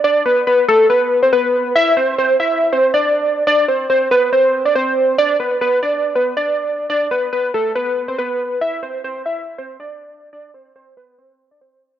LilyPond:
\new Staff \with { instrumentName = "Synth keys" } { \time 4/4 \key c \lydian \tempo 4 = 140 d''8 b'8 b'8 a'8 b'8. c''16 b'4 | e''8 c''8 c''8 e''8. c''8 d''4~ d''16 | d''8 c''8 c''8 b'8 c''8. d''16 c''4 | d''8 b'8 b'8 d''8. b'8 d''4~ d''16 |
d''8 b'8 b'8 a'8 b'8. c''16 b'4 | e''8 c''8 c''8 e''8. c''8 d''4~ d''16 | d''8 c''8 c''8 b'8 c''8. d''16 c''4 | }